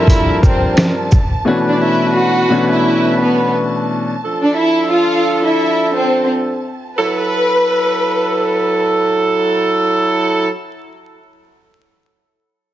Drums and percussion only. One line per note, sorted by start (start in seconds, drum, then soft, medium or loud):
0.07 kick loud
0.07 closed hi-hat loud
0.43 kick loud
0.43 shaker medium
0.77 snare loud
0.77 closed hi-hat medium
1.12 kick loud
1.12 shaker medium